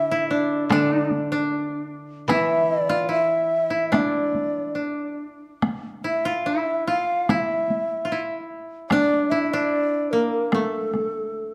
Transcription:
Already playing: D3 A3 D4 E4 E5
0.11 E4
0.31 D4 D5
0.70 D3 D4 D5, taiko rim, taiko high
1.10 taiko high
1.32 D4
2.28 E3 E4 E5, taiko rim, taiko high
2.81 D5
2.89 F4
3.09 E4 E5
3.70 E4
3.92 D4 E5, taiko rim, taiko high
3.97 D5
4.35 taiko high
4.75 D4
5.62 taiko rim, taiko high
6.04 E4 E5
6.25 F4 F5
6.46 E4 E5
6.87 F4 F5
7.29 E4 E5, taiko rim, taiko high
7.70 taiko high
8.05 F4
8.12 E4
8.90 D4 D5, taiko rim, taiko high
9.30 E4 E5
9.43 E5
9.52 D4 D5
10.11 A#3 A#4
10.53 A3 A4, taiko rim, taiko high
10.94 taiko rim, taiko high

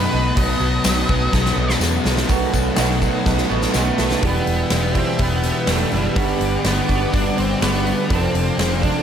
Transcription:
Already playing: B2 D#3 F#3 A3 B3 D#4 F#4 A4 B4 F#5 A5 D#6
0.11 B1 F#3 B3 D#4
0.35 B1 B2 F#3 B3 D#5, kick, open hi-hat
0.60 B1 F#3
0.84 B1 D#4, snare, open hi-hat, tambourine
1.08 B1 F#3 B3, kick
1.31 B1 B2 F#3 B3 A4, kick, snare
1.46 snare
1.56 B1 D#4
1.70 snare
1.80 E2 B2 F#3 B3, snare, tambourine
2.04 B1 F#3 B3 D#4, snare
2.17 snare
2.28 B1 B2 D#3 F#3 A3 B3 F#4 B4 A5 D#6, kick, open hi-hat, tambourine
2.32 F#5
2.52 B1 F#3 B3, kick, tambourine
2.76 B1 B2 D#3 F#3 A3 B3 D#4 F#4, snare, open hi-hat, tambourine
3.00 F#3 B3 A4, kick, tambourine
3.26 B1 D#4, kick, snare
3.38 snare
3.49 A1 F#3 A3 B3 F#4, tambourine
3.62 snare
3.73 B1 B2 D#3 F#3 A3 B3 D#4 F#4, snare, tambourine
3.78 A3
3.98 B1 A3 B3 F#4 A4, snare
4.11 snare
4.21 E1 E2 B2 E3 G3 B3 G4 B4 E5 G5 E6, kick, open hi-hat
4.28 B3
4.46 E1 B3, open hi-hat
4.70 E1 B3, snare, open hi-hat
4.94 E2 B2 E3 G3 B3 C4 E4 G4, kick, open hi-hat
5.18 E1 E2 B2 E3 B3 G4, kick, open hi-hat
5.43 B3, snare, open hi-hat
5.66 E1 E2 B2 E3 G3 B3 G4, snare, open hi-hat
5.70 A3
5.91 F#1 G3 E4, open hi-hat
6.14 G1 G2 D3 G3 B3 D4 F#4 D5 F#5 D6, kick, open hi-hat
6.18 G3
6.39 G1 B3, open hi-hat
6.64 G1 B3, snare, open hi-hat
6.87 G1 G3 B3 D4 F#4, kick, open hi-hat
7.12 G1 G2 D3 G3 D4 F#4, kick, open hi-hat
7.37 G1 B3 C4, open hi-hat
7.61 G1 G3 B3 D4 F#4, snare, open hi-hat
7.86 D4, open hi-hat
8.08 F1 F2 C3 F3 C4 C5 F5 A5 D6, kick, open hi-hat
8.12 C4 D4 A4
8.33 F1 C4, open hi-hat
8.57 F1 F3, snare, open hi-hat
8.82 F3 C4 D4 A4, kick, open hi-hat

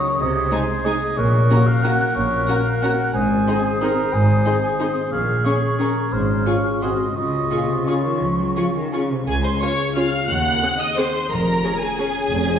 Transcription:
Already playing: C#3 C#4 D#4 F#4 C#5 D#6
0.04 A#3
0.19 C2 C3 G#4 D#5
0.35 C4
0.51 G#3 D#4 C5 G#5
0.68 D#4
0.84 G#3 D#4 G#4 D#5 G#5
1.01 G#3
1.17 A#1 A#2 A#4 C#5 F#6
1.33 A#3
1.50 A#3 C#4 F#4 A#5
1.67 F#4 F5
1.83 A#3 C#4 F#4 A#4 F#5 A#5
2.00 C#4
2.15 A#1 A#2 C#5
2.31 A#3
2.47 A#3 C#4 F#4 A#5
2.65 F#4 F5
2.82 A#3 C#4 F#4 A#4 F#5 A#5
2.98 C#4
3.13 G#1 G#2 C5 G#5 D#6
3.30 D#3
3.47 C4 D#4 G#4 C6
3.64 G#4 G#5
3.81 C4 D#4 G#4 A#4 C6
3.97 D#4
4.13 G#1 G#2 G#5
4.28 D#3
4.45 C4 D#4 G#4 C6
4.62 G#4 G#5
4.79 C4 D#4 G#4 C5 C6
4.96 D#4
5.12 A#1 A#2 G#4 F5 C#6
5.28 F3
5.45 C#4 G#4 C#5 C#6
5.62 G#4
5.79 C#4 G#4 A#4 C#5 C#6
5.97 C#4
6.12 G#1 G#2 C5 F6
6.29 G#3
6.46 C#4 F4 G#4 C#5 C#6
6.64 G#4
6.81 G#1 G#2 C4 F#4 G#4 D#5 C6
6.99 G#4 C5
7.15 C#2 C#3 F4 D#5 C#6
7.33 G#3
7.51 A#2 C#4 F4 G#4 C#6
7.69 C3 G#4
7.87 C#3 C#4 F4 G#4 C#5 C#6
8.05 D#3 F4
8.21 C#2 C#3 F3
8.39 F#3 G#3
8.56 F3 C#4 F4 G#4 C#6
8.75 D#3 G#4
8.92 C#3 C#4 F4 G#4 C#5 C#6
9.10 C3 F4
9.27 C#2 C#3 G#4 G#5
9.43 G#3 C5 C6
9.60 C#4 F4 C#5 C#6
9.79 G#4
9.96 C#4 F4 C#5 F5 F6
10.13 F4
10.29 D#2 D#3 F#5 F#6
10.45 C4
10.62 C4 D#4 G#4
10.79 G#4 D#5 D#6
10.97 C4 G#4 C5 C6
11.14 D#4
11.30 F1 F2 F3 A#4 A#5
11.47 F4
11.64 C#4 G#4
11.81 G#4 G#5
11.98 C#4 G#4 C#5
12.15 C#4
12.31 F1 F2 F3
12.47 F4

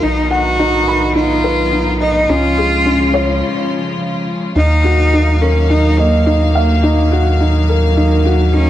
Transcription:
Already playing: D#3 F#3
0.03 B1 B3 D#4
0.31 F#4 F#5
0.59 D#4
0.88 B5
1.15 D#4 F4
1.44 B4
1.72 D#4
2.01 D#4 D#5
2.29 C#2 C#3 F3 G#3 C#4 F4
2.58 G#4
2.86 C#4
3.14 C#5
4.56 D#2 D#3 F#3 A#3 D#4 F5
4.84 F#4
5.13 D#4
5.41 C#4 A#4
5.70 D#4
5.98 A#3 D#5
6.26 D#4
6.55 A#3 F5
6.83 D#4
7.12 F#4
7.40 D#4
7.69 A#4
7.97 D#4
8.25 F#4
8.53 C#4 D#4

